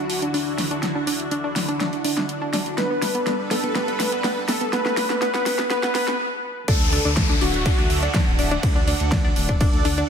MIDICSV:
0, 0, Header, 1, 7, 480
1, 0, Start_track
1, 0, Key_signature, 2, "major"
1, 0, Tempo, 487805
1, 814, Time_signature, 4, 2, 24, 8
1, 9930, End_track
2, 0, Start_track
2, 0, Title_t, "Analog synth lead"
2, 0, Program_c, 0, 81
2, 0, Note_on_c, 0, 66, 103
2, 242, Note_off_c, 0, 66, 0
2, 2734, Note_on_c, 0, 71, 94
2, 3362, Note_off_c, 0, 71, 0
2, 3454, Note_on_c, 0, 69, 89
2, 3676, Note_off_c, 0, 69, 0
2, 3693, Note_on_c, 0, 71, 99
2, 4321, Note_off_c, 0, 71, 0
2, 4414, Note_on_c, 0, 69, 91
2, 4636, Note_off_c, 0, 69, 0
2, 4654, Note_on_c, 0, 71, 107
2, 5116, Note_off_c, 0, 71, 0
2, 5135, Note_on_c, 0, 71, 100
2, 5596, Note_off_c, 0, 71, 0
2, 5616, Note_on_c, 0, 71, 105
2, 5836, Note_off_c, 0, 71, 0
2, 5854, Note_on_c, 0, 71, 109
2, 6076, Note_off_c, 0, 71, 0
2, 6575, Note_on_c, 0, 69, 99
2, 7202, Note_off_c, 0, 69, 0
2, 7294, Note_on_c, 0, 66, 101
2, 7922, Note_off_c, 0, 66, 0
2, 9930, End_track
3, 0, Start_track
3, 0, Title_t, "Analog synth pad"
3, 0, Program_c, 1, 89
3, 0, Note_on_c, 1, 50, 80
3, 0, Note_on_c, 1, 62, 75
3, 0, Note_on_c, 1, 64, 74
3, 0, Note_on_c, 1, 66, 91
3, 2696, Note_off_c, 1, 50, 0
3, 2696, Note_off_c, 1, 64, 0
3, 2696, Note_off_c, 1, 66, 0
3, 2733, Note_on_c, 1, 55, 86
3, 2734, Note_on_c, 1, 69, 78
3, 2735, Note_on_c, 1, 71, 91
3, 6055, Note_off_c, 1, 62, 0
3, 6060, Note_off_c, 1, 55, 0
3, 6060, Note_off_c, 1, 69, 0
3, 6061, Note_off_c, 1, 71, 0
3, 6574, Note_on_c, 1, 62, 87
3, 6574, Note_on_c, 1, 76, 82
3, 6574, Note_on_c, 1, 78, 95
3, 6575, Note_on_c, 1, 69, 78
3, 8475, Note_off_c, 1, 76, 0
3, 8494, Note_on_c, 1, 74, 78
3, 9930, Note_off_c, 1, 62, 0
3, 9930, Note_off_c, 1, 69, 0
3, 9930, Note_off_c, 1, 74, 0
3, 9930, Note_off_c, 1, 78, 0
3, 9930, End_track
4, 0, Start_track
4, 0, Title_t, "Synth pluck"
4, 0, Program_c, 2, 84
4, 220, Note_on_c, 2, 62, 71
4, 285, Note_off_c, 2, 62, 0
4, 335, Note_on_c, 2, 62, 86
4, 377, Note_off_c, 2, 62, 0
4, 573, Note_on_c, 2, 62, 72
4, 644, Note_off_c, 2, 62, 0
4, 699, Note_on_c, 2, 62, 82
4, 738, Note_off_c, 2, 62, 0
4, 938, Note_on_c, 2, 62, 80
4, 1004, Note_off_c, 2, 62, 0
4, 1054, Note_on_c, 2, 62, 77
4, 1096, Note_off_c, 2, 62, 0
4, 1293, Note_on_c, 2, 62, 83
4, 1364, Note_off_c, 2, 62, 0
4, 1417, Note_on_c, 2, 62, 80
4, 1457, Note_off_c, 2, 62, 0
4, 1657, Note_on_c, 2, 62, 72
4, 1723, Note_off_c, 2, 62, 0
4, 1772, Note_on_c, 2, 62, 80
4, 1816, Note_off_c, 2, 62, 0
4, 2012, Note_on_c, 2, 62, 77
4, 2084, Note_off_c, 2, 62, 0
4, 2137, Note_on_c, 2, 62, 73
4, 2177, Note_off_c, 2, 62, 0
4, 2377, Note_on_c, 2, 62, 80
4, 2443, Note_off_c, 2, 62, 0
4, 2493, Note_on_c, 2, 62, 72
4, 2536, Note_off_c, 2, 62, 0
4, 2733, Note_on_c, 2, 59, 78
4, 2804, Note_off_c, 2, 59, 0
4, 2857, Note_on_c, 2, 59, 73
4, 2897, Note_off_c, 2, 59, 0
4, 3097, Note_on_c, 2, 59, 72
4, 3163, Note_off_c, 2, 59, 0
4, 3211, Note_on_c, 2, 59, 77
4, 3255, Note_off_c, 2, 59, 0
4, 3452, Note_on_c, 2, 59, 68
4, 3524, Note_off_c, 2, 59, 0
4, 3576, Note_on_c, 2, 59, 71
4, 3617, Note_off_c, 2, 59, 0
4, 3692, Note_on_c, 2, 59, 80
4, 3764, Note_off_c, 2, 59, 0
4, 3816, Note_on_c, 2, 59, 75
4, 3857, Note_off_c, 2, 59, 0
4, 4057, Note_on_c, 2, 59, 72
4, 4123, Note_off_c, 2, 59, 0
4, 4172, Note_on_c, 2, 59, 82
4, 4216, Note_off_c, 2, 59, 0
4, 4412, Note_on_c, 2, 59, 72
4, 4484, Note_off_c, 2, 59, 0
4, 4537, Note_on_c, 2, 59, 75
4, 4577, Note_off_c, 2, 59, 0
4, 4653, Note_on_c, 2, 59, 81
4, 4724, Note_off_c, 2, 59, 0
4, 4777, Note_on_c, 2, 59, 78
4, 4817, Note_off_c, 2, 59, 0
4, 5018, Note_on_c, 2, 59, 74
4, 5084, Note_off_c, 2, 59, 0
4, 5133, Note_on_c, 2, 59, 82
4, 5204, Note_off_c, 2, 59, 0
4, 5257, Note_on_c, 2, 59, 81
4, 5297, Note_off_c, 2, 59, 0
4, 5498, Note_on_c, 2, 59, 74
4, 5564, Note_off_c, 2, 59, 0
4, 5614, Note_on_c, 2, 59, 84
4, 5685, Note_off_c, 2, 59, 0
4, 5739, Note_on_c, 2, 59, 79
4, 5778, Note_off_c, 2, 59, 0
4, 5853, Note_on_c, 2, 59, 82
4, 5924, Note_off_c, 2, 59, 0
4, 5978, Note_on_c, 2, 59, 78
4, 6018, Note_off_c, 2, 59, 0
4, 6574, Note_on_c, 2, 62, 82
4, 6574, Note_on_c, 2, 74, 57
4, 6616, Note_off_c, 2, 62, 0
4, 6616, Note_off_c, 2, 74, 0
4, 6814, Note_on_c, 2, 62, 82
4, 6815, Note_on_c, 2, 74, 55
4, 6885, Note_off_c, 2, 62, 0
4, 6885, Note_off_c, 2, 74, 0
4, 6938, Note_on_c, 2, 74, 52
4, 6939, Note_on_c, 2, 62, 75
4, 6978, Note_off_c, 2, 62, 0
4, 6978, Note_off_c, 2, 74, 0
4, 7179, Note_on_c, 2, 62, 81
4, 7179, Note_on_c, 2, 74, 53
4, 7244, Note_off_c, 2, 62, 0
4, 7244, Note_off_c, 2, 74, 0
4, 7294, Note_on_c, 2, 62, 77
4, 7294, Note_on_c, 2, 74, 55
4, 7336, Note_off_c, 2, 62, 0
4, 7336, Note_off_c, 2, 74, 0
4, 7534, Note_on_c, 2, 62, 79
4, 7534, Note_on_c, 2, 74, 57
4, 7605, Note_off_c, 2, 62, 0
4, 7605, Note_off_c, 2, 74, 0
4, 7659, Note_on_c, 2, 62, 77
4, 7659, Note_on_c, 2, 74, 52
4, 7698, Note_off_c, 2, 62, 0
4, 7698, Note_off_c, 2, 74, 0
4, 7898, Note_on_c, 2, 62, 72
4, 7899, Note_on_c, 2, 74, 53
4, 7964, Note_off_c, 2, 62, 0
4, 7964, Note_off_c, 2, 74, 0
4, 8014, Note_on_c, 2, 62, 87
4, 8014, Note_on_c, 2, 74, 62
4, 8057, Note_off_c, 2, 62, 0
4, 8057, Note_off_c, 2, 74, 0
4, 8253, Note_on_c, 2, 62, 73
4, 8253, Note_on_c, 2, 74, 52
4, 8324, Note_off_c, 2, 62, 0
4, 8324, Note_off_c, 2, 74, 0
4, 8378, Note_on_c, 2, 62, 81
4, 8378, Note_on_c, 2, 74, 55
4, 8418, Note_off_c, 2, 62, 0
4, 8418, Note_off_c, 2, 74, 0
4, 8618, Note_on_c, 2, 62, 86
4, 8618, Note_on_c, 2, 74, 57
4, 8684, Note_off_c, 2, 62, 0
4, 8684, Note_off_c, 2, 74, 0
4, 8732, Note_on_c, 2, 74, 54
4, 8733, Note_on_c, 2, 62, 80
4, 8775, Note_off_c, 2, 74, 0
4, 8776, Note_off_c, 2, 62, 0
4, 8973, Note_on_c, 2, 62, 77
4, 8973, Note_on_c, 2, 74, 57
4, 9044, Note_off_c, 2, 62, 0
4, 9044, Note_off_c, 2, 74, 0
4, 9097, Note_on_c, 2, 74, 57
4, 9098, Note_on_c, 2, 62, 77
4, 9137, Note_off_c, 2, 62, 0
4, 9137, Note_off_c, 2, 74, 0
4, 9337, Note_on_c, 2, 62, 73
4, 9337, Note_on_c, 2, 74, 53
4, 9403, Note_off_c, 2, 62, 0
4, 9403, Note_off_c, 2, 74, 0
4, 9453, Note_on_c, 2, 62, 81
4, 9453, Note_on_c, 2, 74, 56
4, 9496, Note_off_c, 2, 62, 0
4, 9496, Note_off_c, 2, 74, 0
4, 9693, Note_on_c, 2, 62, 76
4, 9693, Note_on_c, 2, 74, 55
4, 9764, Note_off_c, 2, 62, 0
4, 9764, Note_off_c, 2, 74, 0
4, 9818, Note_on_c, 2, 62, 80
4, 9818, Note_on_c, 2, 74, 54
4, 9858, Note_off_c, 2, 62, 0
4, 9858, Note_off_c, 2, 74, 0
4, 9930, End_track
5, 0, Start_track
5, 0, Title_t, "Detuned saw bass"
5, 0, Program_c, 3, 39
5, 6575, Note_on_c, 3, 38, 98
5, 6870, Note_off_c, 3, 38, 0
5, 6940, Note_on_c, 3, 38, 100
5, 7231, Note_off_c, 3, 38, 0
5, 7295, Note_on_c, 3, 26, 103
5, 7590, Note_off_c, 3, 26, 0
5, 7660, Note_on_c, 3, 38, 77
5, 7951, Note_off_c, 3, 38, 0
5, 8139, Note_on_c, 3, 26, 97
5, 8430, Note_off_c, 3, 26, 0
5, 8494, Note_on_c, 3, 38, 101
5, 8790, Note_off_c, 3, 38, 0
5, 8858, Note_on_c, 3, 38, 97
5, 9150, Note_off_c, 3, 38, 0
5, 9213, Note_on_c, 3, 26, 106
5, 9509, Note_off_c, 3, 26, 0
5, 9577, Note_on_c, 3, 38, 82
5, 9870, Note_off_c, 3, 38, 0
5, 9930, End_track
6, 0, Start_track
6, 0, Title_t, "Downlifter"
6, 0, Program_c, 4, 103
6, 6575, Note_on_c, 4, 60, 82
6, 9930, Note_off_c, 4, 60, 0
6, 9930, End_track
7, 0, Start_track
7, 0, Title_t, "Drums"
7, 95, Note_on_c, 9, 46, 96
7, 193, Note_off_c, 9, 46, 0
7, 220, Note_on_c, 9, 42, 52
7, 318, Note_off_c, 9, 42, 0
7, 335, Note_on_c, 9, 46, 61
7, 434, Note_off_c, 9, 46, 0
7, 574, Note_on_c, 9, 38, 58
7, 574, Note_on_c, 9, 46, 103
7, 673, Note_off_c, 9, 38, 0
7, 673, Note_off_c, 9, 46, 0
7, 700, Note_on_c, 9, 42, 56
7, 798, Note_off_c, 9, 42, 0
7, 814, Note_on_c, 9, 38, 60
7, 814, Note_on_c, 9, 42, 65
7, 913, Note_off_c, 9, 38, 0
7, 913, Note_off_c, 9, 42, 0
7, 1054, Note_on_c, 9, 46, 114
7, 1153, Note_off_c, 9, 46, 0
7, 1179, Note_on_c, 9, 42, 50
7, 1277, Note_off_c, 9, 42, 0
7, 1293, Note_on_c, 9, 42, 63
7, 1391, Note_off_c, 9, 42, 0
7, 1534, Note_on_c, 9, 38, 62
7, 1534, Note_on_c, 9, 46, 111
7, 1632, Note_off_c, 9, 38, 0
7, 1632, Note_off_c, 9, 46, 0
7, 1659, Note_on_c, 9, 42, 51
7, 1758, Note_off_c, 9, 42, 0
7, 1774, Note_on_c, 9, 38, 63
7, 1774, Note_on_c, 9, 42, 66
7, 1873, Note_off_c, 9, 38, 0
7, 1873, Note_off_c, 9, 42, 0
7, 1898, Note_on_c, 9, 42, 37
7, 1996, Note_off_c, 9, 42, 0
7, 2012, Note_on_c, 9, 46, 107
7, 2111, Note_off_c, 9, 46, 0
7, 2139, Note_on_c, 9, 38, 59
7, 2139, Note_on_c, 9, 42, 49
7, 2237, Note_off_c, 9, 38, 0
7, 2237, Note_off_c, 9, 42, 0
7, 2254, Note_on_c, 9, 42, 63
7, 2352, Note_off_c, 9, 42, 0
7, 2494, Note_on_c, 9, 38, 73
7, 2494, Note_on_c, 9, 46, 114
7, 2592, Note_off_c, 9, 38, 0
7, 2592, Note_off_c, 9, 46, 0
7, 2618, Note_on_c, 9, 42, 55
7, 2717, Note_off_c, 9, 42, 0
7, 2734, Note_on_c, 9, 38, 74
7, 2734, Note_on_c, 9, 42, 68
7, 2833, Note_off_c, 9, 38, 0
7, 2833, Note_off_c, 9, 42, 0
7, 2974, Note_on_c, 9, 38, 80
7, 2974, Note_on_c, 9, 46, 109
7, 3072, Note_off_c, 9, 38, 0
7, 3072, Note_off_c, 9, 46, 0
7, 3098, Note_on_c, 9, 42, 50
7, 3197, Note_off_c, 9, 42, 0
7, 3214, Note_on_c, 9, 38, 74
7, 3214, Note_on_c, 9, 42, 60
7, 3312, Note_off_c, 9, 38, 0
7, 3312, Note_off_c, 9, 42, 0
7, 3453, Note_on_c, 9, 38, 78
7, 3453, Note_on_c, 9, 46, 112
7, 3552, Note_off_c, 9, 38, 0
7, 3552, Note_off_c, 9, 46, 0
7, 3578, Note_on_c, 9, 42, 50
7, 3677, Note_off_c, 9, 42, 0
7, 3694, Note_on_c, 9, 38, 82
7, 3694, Note_on_c, 9, 42, 60
7, 3792, Note_off_c, 9, 38, 0
7, 3792, Note_off_c, 9, 42, 0
7, 3819, Note_on_c, 9, 42, 38
7, 3918, Note_off_c, 9, 42, 0
7, 3933, Note_on_c, 9, 38, 81
7, 3933, Note_on_c, 9, 46, 113
7, 4032, Note_off_c, 9, 38, 0
7, 4032, Note_off_c, 9, 46, 0
7, 4058, Note_on_c, 9, 42, 53
7, 4157, Note_off_c, 9, 42, 0
7, 4173, Note_on_c, 9, 38, 93
7, 4173, Note_on_c, 9, 46, 69
7, 4272, Note_off_c, 9, 38, 0
7, 4272, Note_off_c, 9, 46, 0
7, 4413, Note_on_c, 9, 38, 92
7, 4413, Note_on_c, 9, 46, 119
7, 4511, Note_off_c, 9, 38, 0
7, 4511, Note_off_c, 9, 46, 0
7, 4538, Note_on_c, 9, 42, 50
7, 4636, Note_off_c, 9, 42, 0
7, 4654, Note_on_c, 9, 38, 94
7, 4654, Note_on_c, 9, 42, 67
7, 4752, Note_off_c, 9, 38, 0
7, 4752, Note_off_c, 9, 42, 0
7, 4777, Note_on_c, 9, 38, 83
7, 4876, Note_off_c, 9, 38, 0
7, 4892, Note_on_c, 9, 38, 94
7, 4892, Note_on_c, 9, 46, 113
7, 4991, Note_off_c, 9, 38, 0
7, 4991, Note_off_c, 9, 46, 0
7, 5018, Note_on_c, 9, 38, 82
7, 5018, Note_on_c, 9, 42, 50
7, 5116, Note_off_c, 9, 38, 0
7, 5116, Note_off_c, 9, 42, 0
7, 5133, Note_on_c, 9, 38, 96
7, 5133, Note_on_c, 9, 42, 62
7, 5232, Note_off_c, 9, 38, 0
7, 5232, Note_off_c, 9, 42, 0
7, 5258, Note_on_c, 9, 38, 85
7, 5258, Note_on_c, 9, 42, 35
7, 5357, Note_off_c, 9, 38, 0
7, 5357, Note_off_c, 9, 42, 0
7, 5373, Note_on_c, 9, 38, 101
7, 5373, Note_on_c, 9, 46, 111
7, 5472, Note_off_c, 9, 38, 0
7, 5472, Note_off_c, 9, 46, 0
7, 5498, Note_on_c, 9, 38, 87
7, 5498, Note_on_c, 9, 42, 49
7, 5596, Note_off_c, 9, 38, 0
7, 5596, Note_off_c, 9, 42, 0
7, 5613, Note_on_c, 9, 38, 103
7, 5613, Note_on_c, 9, 42, 61
7, 5711, Note_off_c, 9, 38, 0
7, 5711, Note_off_c, 9, 42, 0
7, 5738, Note_on_c, 9, 38, 95
7, 5738, Note_on_c, 9, 42, 37
7, 5836, Note_off_c, 9, 38, 0
7, 5836, Note_off_c, 9, 42, 0
7, 5853, Note_on_c, 9, 38, 104
7, 5853, Note_on_c, 9, 46, 113
7, 5951, Note_off_c, 9, 38, 0
7, 5951, Note_off_c, 9, 46, 0
7, 5978, Note_on_c, 9, 38, 88
7, 5978, Note_on_c, 9, 42, 49
7, 6077, Note_off_c, 9, 38, 0
7, 6077, Note_off_c, 9, 42, 0
7, 6574, Note_on_c, 9, 42, 76
7, 6574, Note_on_c, 9, 51, 71
7, 6575, Note_on_c, 9, 36, 115
7, 6672, Note_off_c, 9, 42, 0
7, 6672, Note_off_c, 9, 51, 0
7, 6673, Note_off_c, 9, 36, 0
7, 6813, Note_on_c, 9, 46, 107
7, 6911, Note_off_c, 9, 46, 0
7, 6938, Note_on_c, 9, 42, 52
7, 7037, Note_off_c, 9, 42, 0
7, 7052, Note_on_c, 9, 38, 119
7, 7054, Note_on_c, 9, 42, 65
7, 7054, Note_on_c, 9, 51, 65
7, 7055, Note_on_c, 9, 36, 120
7, 7151, Note_off_c, 9, 38, 0
7, 7152, Note_off_c, 9, 42, 0
7, 7152, Note_off_c, 9, 51, 0
7, 7153, Note_off_c, 9, 36, 0
7, 7295, Note_on_c, 9, 46, 107
7, 7393, Note_off_c, 9, 46, 0
7, 7419, Note_on_c, 9, 42, 54
7, 7518, Note_off_c, 9, 42, 0
7, 7534, Note_on_c, 9, 42, 70
7, 7534, Note_on_c, 9, 51, 66
7, 7535, Note_on_c, 9, 36, 122
7, 7633, Note_off_c, 9, 36, 0
7, 7633, Note_off_c, 9, 42, 0
7, 7633, Note_off_c, 9, 51, 0
7, 7659, Note_on_c, 9, 42, 40
7, 7758, Note_off_c, 9, 42, 0
7, 7774, Note_on_c, 9, 46, 103
7, 7872, Note_off_c, 9, 46, 0
7, 7899, Note_on_c, 9, 42, 55
7, 7997, Note_off_c, 9, 42, 0
7, 8013, Note_on_c, 9, 38, 125
7, 8014, Note_on_c, 9, 46, 64
7, 8014, Note_on_c, 9, 51, 65
7, 8015, Note_on_c, 9, 36, 121
7, 8111, Note_off_c, 9, 38, 0
7, 8113, Note_off_c, 9, 36, 0
7, 8113, Note_off_c, 9, 46, 0
7, 8113, Note_off_c, 9, 51, 0
7, 8253, Note_on_c, 9, 46, 111
7, 8352, Note_off_c, 9, 46, 0
7, 8378, Note_on_c, 9, 42, 59
7, 8477, Note_off_c, 9, 42, 0
7, 8494, Note_on_c, 9, 36, 123
7, 8494, Note_on_c, 9, 42, 70
7, 8494, Note_on_c, 9, 51, 69
7, 8592, Note_off_c, 9, 42, 0
7, 8592, Note_off_c, 9, 51, 0
7, 8593, Note_off_c, 9, 36, 0
7, 8733, Note_on_c, 9, 46, 112
7, 8832, Note_off_c, 9, 46, 0
7, 8858, Note_on_c, 9, 42, 54
7, 8956, Note_off_c, 9, 42, 0
7, 8971, Note_on_c, 9, 38, 120
7, 8973, Note_on_c, 9, 42, 62
7, 8973, Note_on_c, 9, 51, 63
7, 8974, Note_on_c, 9, 36, 123
7, 9070, Note_off_c, 9, 38, 0
7, 9071, Note_off_c, 9, 42, 0
7, 9071, Note_off_c, 9, 51, 0
7, 9073, Note_off_c, 9, 36, 0
7, 9212, Note_on_c, 9, 46, 117
7, 9310, Note_off_c, 9, 46, 0
7, 9337, Note_on_c, 9, 42, 53
7, 9339, Note_on_c, 9, 36, 69
7, 9435, Note_off_c, 9, 42, 0
7, 9437, Note_off_c, 9, 36, 0
7, 9452, Note_on_c, 9, 42, 65
7, 9452, Note_on_c, 9, 51, 65
7, 9454, Note_on_c, 9, 36, 127
7, 9551, Note_off_c, 9, 42, 0
7, 9551, Note_off_c, 9, 51, 0
7, 9552, Note_off_c, 9, 36, 0
7, 9577, Note_on_c, 9, 42, 37
7, 9676, Note_off_c, 9, 42, 0
7, 9693, Note_on_c, 9, 46, 105
7, 9791, Note_off_c, 9, 46, 0
7, 9818, Note_on_c, 9, 42, 52
7, 9916, Note_off_c, 9, 42, 0
7, 9930, End_track
0, 0, End_of_file